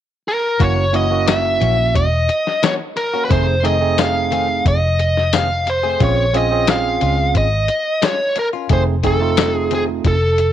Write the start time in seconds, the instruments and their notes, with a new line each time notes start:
0.28 lead electric guitar A#4
0.59 fingered electric bass F#1, clean electric guitar E3 A#3 C#4 F#4, tine electric piano A#3 C#4 E4 F#4, lead electric guitar C#5, kick, closed hi-hat
0.77 muted clean electric guitar stroke
0.93 clean electric guitar E3 A#3 C#4 F#4, tine electric piano A#3 C#4 E4 F#4, lead electric guitar D#5, closed hi-hat
1.10 tine electric piano A#3 C#4 E4 F#4, muted clean electric guitar stroke
1.28 lead electric guitar E5, snare, closed hi-hat, tambourine
1.45 muted clean electric guitar stroke
1.61 fingered electric bass A#1, clean electric guitar E3 A#3 C#4 F#4, closed hi-hat
1.78 muted clean electric guitar stroke
1.95 fingered electric bass E1, lead electric guitar D#5, muted clean electric guitar stroke, kick, closed hi-hat
2.29 muted clean electric guitar stroke, closed hi-hat
2.47 snare
2.63 clean electric guitar E3 A#3 C#4 F#4, lead electric guitar C#5, snare, closed hi-hat, tambourine
2.79 muted clean electric guitar stroke
2.97 lead electric guitar A#4, muted clean electric guitar stroke, closed hi-hat
3.14 clean electric guitar A#3 C#4 F#4
3.25 lead electric guitar B4
3.29 fingered electric bass F1, clean electric guitar D#3 A3 C4 G#4, tine electric piano A3 C4 D#4 G#4, lead electric guitar C5, kick, closed hi-hat
3.47 muted clean electric guitar stroke
3.63 clean electric guitar D#3 A3 C4 G#4, tine electric piano A3 C4 D#4 G#4, lead electric guitar D#5, closed hi-hat
3.80 tine electric piano A3 C4 D#4 G#4
3.98 lead electric guitar F5, snare, closed hi-hat, tambourine
4.15 muted clean electric guitar stroke
4.31 clean electric guitar D#3 A3 C4 G#4, closed hi-hat
4.49 muted clean electric guitar stroke
4.66 fingered electric bass F1, lead electric guitar D#5, muted clean electric guitar stroke, kick, closed hi-hat
4.99 muted clean electric guitar stroke, closed hi-hat
5.17 snare
5.33 clean electric guitar D#3 A3 C4 G#4, lead electric guitar F5, snare, closed hi-hat, tambourine
5.50 muted clean electric guitar stroke
5.67 lead electric guitar C5, muted clean electric guitar stroke, closed hi-hat
5.83 clean electric guitar A3 C4 G#4
6.00 fingered electric bass A#1, clean electric guitar G#3 C#4 F4, tine electric piano C4 C#4 F4 G#4, lead electric guitar C#5, kick, closed hi-hat
6.17 muted clean electric guitar stroke
6.33 clean electric guitar G#3 C#4 F4, tine electric piano C4 C#4 F4 G#4, lead electric guitar D#5, closed hi-hat
6.51 tine electric piano C4 C#4 F4 G#4, muted clean electric guitar stroke
6.67 lead electric guitar F5, snare, closed hi-hat, tambourine
6.84 muted clean electric guitar stroke
7.01 fingered electric bass C#2, clean electric guitar G#3 C#4 F4, closed hi-hat
7.18 muted clean electric guitar stroke
7.34 fingered electric bass G#1, lead electric guitar D#5, muted clean electric guitar stroke, kick, closed hi-hat
7.68 muted clean electric guitar stroke, closed hi-hat
8.02 clean electric guitar G#3 C#4 F4, lead electric guitar C#5, snare, closed hi-hat, tambourine
8.20 muted clean electric guitar stroke
8.36 lead electric guitar A#4, muted clean electric guitar stroke, closed hi-hat
8.53 clean electric guitar C#4 F4
8.69 fingered electric bass F1, clean electric guitar D#3 A3 C4 G#4, tine electric piano A3 C4 D#4 G#4, lead electric guitar C5, kick, closed hi-hat
8.87 muted clean electric guitar stroke
9.03 clean electric guitar D#3 A3 C4 G#4, tine electric piano A3 C4 D#4 G#4, lead electric guitar A4, kick, closed hi-hat
9.20 tine electric piano A3 C4 D#4 F4
9.37 snare, closed hi-hat, tambourine
9.55 lead electric guitar G#4, muted clean electric guitar stroke
9.71 clean electric guitar D#3 A3 C4 G#4, lead electric guitar G#4, closed hi-hat
9.89 muted clean electric guitar stroke
10.05 fingered electric bass F1, lead electric guitar A4, muted clean electric guitar stroke, kick, closed hi-hat
10.38 muted clean electric guitar stroke, closed hi-hat